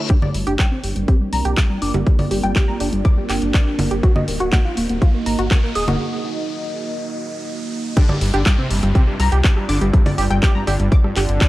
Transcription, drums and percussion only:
0.10 kick, closed hi-hat
0.22 low conga
0.34 open hi-hat
0.47 closed hi-hat
0.59 kick, clap, closed hi-hat
0.84 open hi-hat
0.96 closed hi-hat
1.08 kick, closed hi-hat
1.33 open hi-hat
1.45 closed hi-hat
1.57 kick, clap, closed hi-hat
1.82 open hi-hat
1.94 closed hi-hat, low conga
2.07 kick, closed hi-hat
2.19 open hi-hat, low conga
2.31 open hi-hat
2.44 closed hi-hat
2.56 kick, clap, closed hi-hat
2.80 open hi-hat
2.93 closed hi-hat
3.05 kick, closed hi-hat
3.29 clap, open hi-hat
3.42 closed hi-hat
3.54 kick, clap, closed hi-hat
3.79 open hi-hat, low conga
3.91 closed hi-hat
4.03 kick, closed hi-hat
4.16 low conga
4.28 open hi-hat
4.40 closed hi-hat
4.52 kick, clap, closed hi-hat
4.77 open hi-hat
4.89 closed hi-hat
5.02 kick, closed hi-hat
5.26 open hi-hat
5.39 closed hi-hat
5.51 kick, clap, closed hi-hat
5.75 open hi-hat
5.88 closed hi-hat, low conga
7.97 kick, closed hi-hat, crash
8.09 cross-stick, low conga
8.21 open hi-hat
8.34 closed hi-hat
8.46 kick, cross-stick, clap, closed hi-hat
8.71 open hi-hat
8.83 cross-stick, closed hi-hat
8.95 kick, closed hi-hat
9.20 cross-stick, open hi-hat
9.32 closed hi-hat
9.44 kick, clap, closed hi-hat
9.57 cross-stick
9.69 open hi-hat
9.81 closed hi-hat
9.94 kick, cross-stick, closed hi-hat
10.06 open hi-hat, low conga
10.18 open hi-hat
10.31 cross-stick, closed hi-hat
10.43 kick, clap, closed hi-hat
10.67 cross-stick, open hi-hat
10.80 closed hi-hat
10.92 kick, closed hi-hat
11.04 cross-stick
11.16 clap, open hi-hat
11.29 closed hi-hat
11.41 kick, cross-stick, clap, closed hi-hat

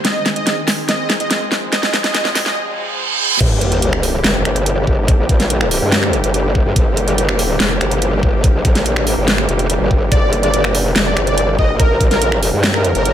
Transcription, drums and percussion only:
0.05 snare, closed hi-hat
0.26 snare, closed hi-hat
0.36 closed hi-hat
0.47 snare, closed hi-hat
0.68 snare, open hi-hat
0.89 snare, closed hi-hat
1.10 snare, closed hi-hat
1.20 closed hi-hat
1.31 snare, closed hi-hat
1.52 snare
1.72 snare, closed hi-hat
1.83 snare
1.93 snare, closed hi-hat
2.04 snare, closed hi-hat
2.14 snare, closed hi-hat
2.25 snare
2.35 snare, open hi-hat
2.46 snare
3.40 kick, closed hi-hat, crash
3.61 closed hi-hat
3.72 closed hi-hat
3.82 closed hi-hat
3.93 finger snap
4.03 open hi-hat
4.24 snare, closed hi-hat
4.45 finger snap, closed hi-hat
4.56 closed hi-hat
4.66 closed hi-hat
4.87 kick
5.08 kick, closed hi-hat
5.29 kick, closed hi-hat
5.40 snare, closed hi-hat
5.50 closed hi-hat
5.61 finger snap
5.71 open hi-hat
5.92 snare, closed hi-hat
6.03 finger snap
6.13 closed hi-hat
6.24 closed hi-hat
6.34 closed hi-hat
6.55 kick
6.76 kick, closed hi-hat
6.97 closed hi-hat
7.08 closed hi-hat
7.18 closed hi-hat
7.29 finger snap
7.39 open hi-hat
7.60 snare, closed hi-hat
7.81 finger snap, closed hi-hat
7.91 closed hi-hat
8.02 closed hi-hat
8.23 kick
8.44 kick, closed hi-hat
8.65 kick, closed hi-hat
8.75 snare, closed hi-hat
8.86 closed hi-hat
8.96 finger snap
9.07 open hi-hat
9.28 snare, closed hi-hat
9.38 finger snap
9.49 closed hi-hat
9.59 closed hi-hat
9.70 closed hi-hat
9.91 kick
10.12 kick, closed hi-hat
10.33 closed hi-hat
10.43 closed hi-hat
10.54 closed hi-hat
10.64 finger snap
10.75 open hi-hat
10.96 snare, closed hi-hat
11.17 finger snap, closed hi-hat
11.27 closed hi-hat
11.38 closed hi-hat
11.59 kick
11.80 kick, closed hi-hat
12.01 kick, closed hi-hat
12.11 snare, closed hi-hat
12.22 closed hi-hat
12.32 finger snap
12.43 open hi-hat
12.64 snare, closed hi-hat
12.74 finger snap
12.84 closed hi-hat
12.95 closed hi-hat
13.05 closed hi-hat

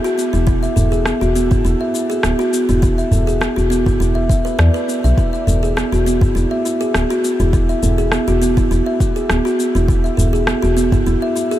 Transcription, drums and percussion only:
0.05 shaker
0.19 shaker
0.34 shaker
0.47 kick, shaker
0.63 shaker
0.77 udu, shaker
0.93 shaker
1.06 cross-stick, shaker
1.22 shaker
1.36 shaker
1.51 kick, udu, shaker
1.66 shaker
1.95 shaker
2.11 shaker
2.23 cross-stick, shaker
2.40 shaker
2.53 shaker
2.69 udu, shaker
2.83 kick, shaker
2.99 shaker
3.11 udu, shaker
3.28 shaker
3.41 cross-stick, shaker
3.58 shaker
3.72 shaker
3.86 kick, udu, shaker
4.02 shaker
4.30 kick, shaker
4.46 shaker
4.59 cross-stick, shaker
4.75 shaker
4.89 shaker
5.05 shaker
5.17 kick, shaker
5.34 shaker
5.47 udu, shaker
5.64 shaker
5.77 cross-stick, shaker
5.94 shaker
6.07 shaker
6.21 kick, udu, shaker
6.37 shaker
6.66 shaker
6.81 shaker
6.94 cross-stick, shaker
7.11 shaker
7.24 shaker
7.40 udu, shaker
7.53 kick, shaker
7.69 shaker
7.83 udu, shaker
7.99 shaker
8.12 cross-stick, shaker
8.28 shaker
8.42 shaker
8.57 kick, udu, shaker
8.72 shaker
9.00 kick, shaker
9.16 shaker
9.30 cross-stick, shaker
9.46 shaker
9.60 shaker
9.76 shaker
9.88 kick, shaker
10.05 shaker
10.18 udu, shaker
10.35 shaker
10.47 cross-stick, shaker
10.64 shaker
10.77 shaker
10.92 kick, udu, shaker
11.07 shaker
11.36 shaker
11.52 shaker

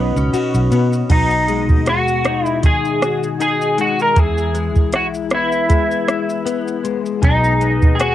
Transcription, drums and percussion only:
0.17 shaker
0.34 ride, shaker
0.54 shaker
0.72 ride, shaker
0.93 shaker
1.10 kick, closed hi-hat, crash, shaker
1.31 shaker
1.48 closed hi-hat, shaker
1.69 kick, shaker
1.86 cross-stick, closed hi-hat, shaker
2.08 shaker
2.25 cross-stick, closed hi-hat, shaker
2.46 shaker
2.63 kick, closed hi-hat, shaker
2.85 shaker
3.02 cross-stick, closed hi-hat, shaker
3.23 shaker
3.40 closed hi-hat, shaker
3.61 shaker
3.78 closed hi-hat, shaker
3.99 shaker
4.16 kick, closed hi-hat, shaker
4.38 shaker
4.55 closed hi-hat, shaker
4.76 kick, shaker
4.93 cross-stick, closed hi-hat, shaker
5.14 shaker
5.31 cross-stick, closed hi-hat, shaker
5.52 shaker
5.70 kick, closed hi-hat, shaker
5.91 shaker
6.08 cross-stick, closed hi-hat, shaker
6.30 shaker
6.47 closed hi-hat, shaker
6.68 shaker
6.85 closed hi-hat, shaker
7.06 shaker
7.23 kick, closed hi-hat, shaker
7.44 shaker
7.61 closed hi-hat, shaker
7.82 kick, shaker
8.00 cross-stick, closed hi-hat, shaker

